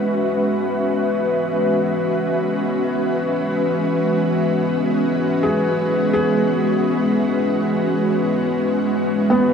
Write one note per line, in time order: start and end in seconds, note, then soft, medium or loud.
0.00 9.54 E3 medium
0.00 9.54 G#3 medium
0.00 9.54 B3 medium
0.00 9.54 C#4 medium
0.00 9.54 F#4 medium
0.00 9.54 B4 medium
0.00 9.54 E5 medium
5.43 6.12 G#4 medium
6.13 9.54 G#4 medium
9.30 9.54 B3 medium